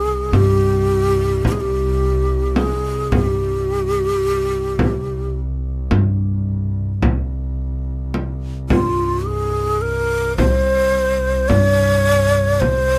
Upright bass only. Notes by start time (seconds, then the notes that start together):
Already playing: C2
0.32 G2
1.44 C2
3.11 G2
4.79 C2
5.91 G2
7.03 C2
8.70 G2
10.38 C2
11.50 G2
12.62 C2